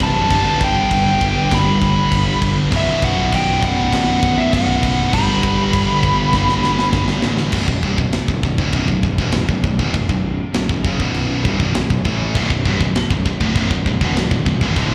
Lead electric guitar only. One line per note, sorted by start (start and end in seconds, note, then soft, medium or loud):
0.03 0.64 A5 loud
0.64 1.56 G5 loud
1.54 2.39 B5 medium
2.76 3.02 E5 medium
3.04 3.31 F#5 medium
3.35 3.64 G5 medium
3.65 4.41 F#5 loud
4.38 4.53 E5 medium
4.54 5.15 F#5 loud
5.14 6.90 B5 loud